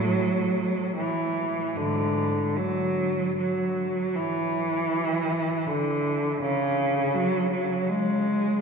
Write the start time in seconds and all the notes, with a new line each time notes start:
Already playing: A2 F#3
0.97 E3
1.77 G#2 D3
2.56 F#3
3.38 F#3
4.16 E3
5.67 D3
6.42 C#3
7.14 F#3
7.52 F#3
7.89 G#3